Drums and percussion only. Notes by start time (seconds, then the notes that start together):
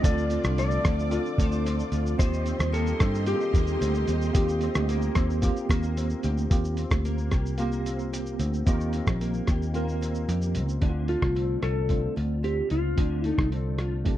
0.04 kick, closed hi-hat, shaker
0.18 shaker
0.30 closed hi-hat, shaker
0.44 cross-stick, shaker
0.58 closed hi-hat, shaker
0.71 shaker
0.85 kick, cross-stick, closed hi-hat, shaker
0.99 shaker
1.11 closed hi-hat, shaker
1.26 shaker
1.38 kick, closed hi-hat, shaker
1.52 shaker
1.66 closed hi-hat, shaker
1.79 shaker
1.92 closed hi-hat, shaker
2.06 shaker
2.19 kick, closed hi-hat, shaker
2.34 shaker
2.46 closed hi-hat, shaker
2.59 cross-stick, shaker
2.74 closed hi-hat, shaker
2.87 shaker
3.00 kick, cross-stick, closed hi-hat, shaker
3.15 shaker
3.26 closed hi-hat, shaker
3.41 shaker
3.54 kick, closed hi-hat, shaker
3.67 shaker
3.82 closed hi-hat, shaker
3.95 shaker
4.08 closed hi-hat, shaker
4.21 shaker
4.35 kick, closed hi-hat, shaker
4.49 shaker
4.61 closed hi-hat, shaker
4.75 cross-stick, shaker
4.89 closed hi-hat, shaker
5.02 shaker
5.15 kick, cross-stick, closed hi-hat, shaker
5.30 shaker
5.42 kick, closed hi-hat, shaker
5.57 shaker
5.69 kick, cross-stick, closed hi-hat, shaker
5.83 shaker
5.97 closed hi-hat, shaker
6.10 shaker
6.23 closed hi-hat, shaker
6.38 shaker
6.51 kick, closed hi-hat, shaker
6.65 shaker
6.77 closed hi-hat, shaker
6.91 kick, cross-stick, shaker
7.05 closed hi-hat, shaker
7.18 shaker
7.31 kick, cross-stick, closed hi-hat, shaker
7.46 shaker
7.58 closed hi-hat, shaker
7.72 shaker
7.86 closed hi-hat, shaker
7.99 shaker
8.14 closed hi-hat, shaker
8.26 shaker
8.40 closed hi-hat, shaker
8.53 shaker
8.67 kick, closed hi-hat, shaker
8.80 shaker
8.93 closed hi-hat, shaker
9.07 kick, cross-stick, shaker
9.21 closed hi-hat, shaker
9.34 shaker
9.47 kick, cross-stick, closed hi-hat, shaker
9.62 shaker
9.74 closed hi-hat, shaker
9.89 shaker
10.02 closed hi-hat, shaker
10.15 shaker
10.29 closed hi-hat, shaker
10.42 shaker
10.55 closed hi-hat, shaker
10.69 shaker
10.82 kick, closed hi-hat
11.08 closed hi-hat
11.22 kick, cross-stick
11.36 closed hi-hat
11.62 cross-stick, closed hi-hat
11.89 kick, closed hi-hat
12.17 closed hi-hat
12.44 closed hi-hat
12.70 closed hi-hat
12.98 kick, closed hi-hat
13.24 closed hi-hat
13.38 kick, cross-stick
13.52 closed hi-hat
13.78 cross-stick, closed hi-hat
14.05 kick, closed hi-hat